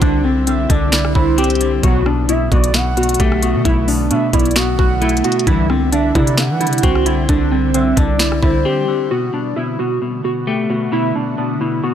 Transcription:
Already playing: D3 G3 C4 E4
0.02 C2 D3 D4, kick, closed hi-hat
0.24 D3 C4
0.47 D3 C4 E5, closed hi-hat
0.69 C2 D3 D4 D5, kick, closed hi-hat
0.92 D3 E4, finger snap, snare, closed hi-hat
1.05 cross-stick
1.15 C2 D3 E4 C5, kick
1.38 C4 G4, closed hi-hat
1.44 closed hi-hat
1.50 closed hi-hat
1.55 closed hi-hat
1.61 D3, closed hi-hat
1.83 B1 D2 B2 F#3 A3 B3 F#4, kick, closed hi-hat
2.06 B2 D4, cross-stick
2.29 B2 E4 E5, closed hi-hat
2.52 B1 B2 F#4 D5, kick, closed hi-hat
2.64 closed hi-hat
2.74 B2 F#5, finger snap, snare, closed hi-hat
2.97 B2 F#4, closed hi-hat
3.03 closed hi-hat
3.09 closed hi-hat
3.14 closed hi-hat
3.20 B1 A3 G4, kick, closed hi-hat
3.32 cross-stick
3.42 B2 F#4, closed hi-hat
3.55 B2
3.65 B1 B2 E4, kick, closed hi-hat
3.88 B2 D4, open hi-hat
4.11 B2 D4 E5, closed hi-hat
4.33 B1 B2 E4 D5, kick, closed hi-hat
4.39 closed hi-hat
4.46 closed hi-hat
4.51 closed hi-hat
4.56 B2 F#4 F#5, finger snap, snare, closed hi-hat
4.79 B1 B2 F#4, kick, cross-stick
5.01 A3 E4, closed hi-hat
5.09 closed hi-hat
5.17 closed hi-hat
5.24 B2 F#4, closed hi-hat
5.32 closed hi-hat
5.39 closed hi-hat
5.47 C2 G2 D3 E3 G3 C4 E4, kick, closed hi-hat
5.70 D3 C4, cross-stick
5.92 D3 D4 E5, closed hi-hat
6.15 C3 D3 E4 D5, kick, closed hi-hat
6.27 closed hi-hat
6.38 D3 F#5, finger snap, snare, closed hi-hat
6.50 E3
6.60 D3 E4, closed hi-hat
6.67 C3, closed hi-hat
6.73 closed hi-hat
6.78 closed hi-hat
6.83 C2 C4 F#4, kick, closed hi-hat
6.95 cross-stick
7.06 D3 E4, closed hi-hat
7.29 C2 D3 D4, kick, closed hi-hat
7.51 D3 C4
7.74 D3 C4 E5, closed hi-hat
7.97 C2 D3 D4 D5, kick, closed hi-hat
8.19 D3 E4, finger snap, snare, closed hi-hat
8.32 cross-stick
8.43 C2 D3 E4 C5, kick
8.65 C4 G4
8.88 D3
9.11 B2 D3 A3 B3 F#4
9.33 B2 D4
9.56 B2 E4
9.79 B2 F#4
10.02 B2
10.24 B2 F#4
10.47 A3 G4
10.70 B2 F#4
10.92 B2 E4
11.15 B2 D4
11.38 B2 D4
11.61 B2 E4
11.84 B2 F#4

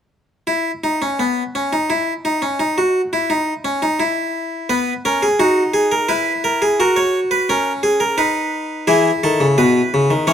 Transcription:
0.47 E4
0.84 D#4
1.02 C#4
1.19 B3
1.55 C#4
1.73 D#4
1.90 E4
2.25 D#4
2.42 C#4
2.60 D#4
2.78 F#4
3.13 E4
3.30 D#4
3.65 C#4
3.82 D#4
4.00 E4
4.69 B3 B4
5.05 C#4 A#4
5.22 G#4
5.40 D#4 F#4
5.74 G#4
5.92 A#4
6.09 E4 B4
6.44 A#4
6.62 G#4
6.80 F#4 A#4
6.96 C#5
7.31 B4
7.49 C#4 A#4
7.83 G#4
8.00 A#4
8.18 D#4 B4
8.87 E3 E4 G#4
9.23 D#3 A4
9.40 C#3
9.58 B2 B4
9.94 C#3
10.10 D#3
10.27 E3 C#4 C#5

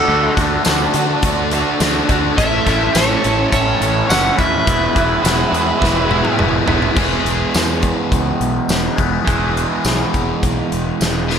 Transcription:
Already playing: D4 F#4 A4
0.08 D2 D3 A3 D4 F#4
0.37 D2 D3 A3 D4, kick, snare, closed hi-hat
0.41 F#4
0.65 D2 D3 A3 D4 F#4, snare, closed hi-hat, tambourine
0.94 D3 A3 D4 F#4, closed hi-hat
1.23 D2 D3 A3 D4 F#4, kick, closed hi-hat
1.51 D3 A3 D4 F#4, closed hi-hat
1.80 D2 D3 A3 D4 F#4, snare, closed hi-hat, tambourine
2.09 D2 D3 A3 D4 F#4, kick, closed hi-hat
2.37 A1 A2 E3 A3 C#4 E4 A4 E5, kick, closed hi-hat
2.66 A1 A2 E3 A3 C#4 E4, kick, snare, closed hi-hat
2.93 A1 A2 E3 A4 C#5, snare, closed hi-hat, tambourine
2.97 A3 C#4 E4
3.24 A1 A2 E3 A3 C#4 E4, closed hi-hat
3.50 A1 A2 E3 A4 C#5, kick, closed hi-hat
3.55 A3 C#4 E4
3.81 A1 A2 E3 A3 C#4 E4, closed hi-hat
4.07 F#1 A2 E3 A3 C#4 E4 C#5 F#5, closed hi-hat, tambourine
4.11 snare
4.37 D#2 A2 E3 A3 C#4 E4 B4 E5, kick, closed hi-hat
4.66 E1 E3 G#3 B3 E4 F#4 G#4, kick, closed hi-hat
4.95 E1 E3 G#3 B3 E4, kick, closed hi-hat
5.22 E1 E3 G#3 B3 E4, snare, closed hi-hat, tambourine
5.52 E2 E3 G#3 B3 E4, closed hi-hat
5.80 E1 E3 G#3 B3 E4, kick, snare
6.10 E3 G#3 B3 E4, high tom
6.25 high tom
6.37 E1 E3 G#3, mid tom
6.41 G#3 B3 E4
6.67 E1 E3 G#3 B3 E4, floor tom
6.82 floor tom
6.95 E1 E3 G#3 B3 E4 G#4, kick, crash
7.25 E1, closed hi-hat
7.54 E2, snare, closed hi-hat, tambourine
7.82 kick, closed hi-hat
8.12 C#2, kick, closed hi-hat
8.40 B1, closed hi-hat
8.69 E1, snare, closed hi-hat, tambourine
8.97 E1 G#3 B3 E4 G#4, kick, closed hi-hat
9.01 E3
9.27 E1 E3 G#3 B3 E4 G#4, kick, closed hi-hat
9.57 closed hi-hat
9.85 B1, snare, closed hi-hat, tambourine
10.14 E1, kick, closed hi-hat
10.43 B1, kick, closed hi-hat
10.72 E1, closed hi-hat
11.01 E1, snare, closed hi-hat, tambourine
11.28 E3 G#3 B3 E4 G#4, snare

